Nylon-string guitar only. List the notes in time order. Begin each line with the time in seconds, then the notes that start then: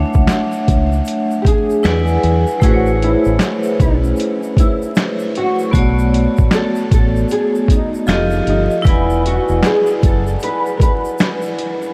1.42 G4
1.48 G#4
2.65 F#4
3.04 E4
3.81 C#4
4.59 E4
5.38 F#4
6.54 A4
6.94 A4
7.32 G#4
7.71 D#4
8.49 D#4
8.88 E4
9.27 F#4
9.66 G#4
10.05 A4
10.44 B4
10.77 A#4
10.82 B4